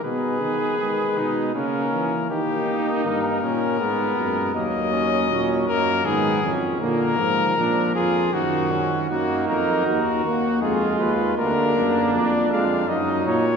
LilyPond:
<<
  \new Staff \with { instrumentName = "Trumpet" } { \time 3/4 \key gis \minor \tempo 4 = 80 b'2 ais'4 | g'4 ais'2 | dis''4. ais'8 aes'8 r8 | ais'4. gis'8 fis'4 |
\key ees \minor ges'8 bes'8 bes'8 ges'8 aes'8 ces''8 | bes'4 d''8 f''8 ees''8 des''8 | }
  \new Staff \with { instrumentName = "Trumpet" } { \time 3/4 \key gis \minor gis'4. dis'8 cis'4 | dis'4. cis'8 b4 | ais8 cis'8 cis'8 ais8 ces'8 cis'8 | ais8 r8 d'8 eis'8 dis'8 cis'8 |
\key ees \minor bes4 ges'4 f'4 | d'2 ees'4 | }
  \new Staff \with { instrumentName = "Trombone" } { \clef bass \time 3/4 \key gis \minor b4 gis4 ais4 | ais2 gis4 | fis2 dis8 r8 | d8 eis8 eis4 dis4 |
\key ees \minor ees'4. bes8 aes4 | bes4. aes8 ges4 | }
  \new Staff \with { instrumentName = "Euphonium" } { \clef bass \time 3/4 \key gis \minor b,8 dis8 dis8 b,8 cis8 e8 | dis4 g,8 ais,8 gis,8 fis,8 | dis,4 ais,8 fis,8 aes,8 f,8 | ais,8 gis,8 ais,8 eis,8 fis,4 |
\key ees \minor ges,8 f,8 ees,8 ees,8 f,8 ees,8 | d,8 ges,8 f,8 f,8 ges,8 bes,8 | }
>>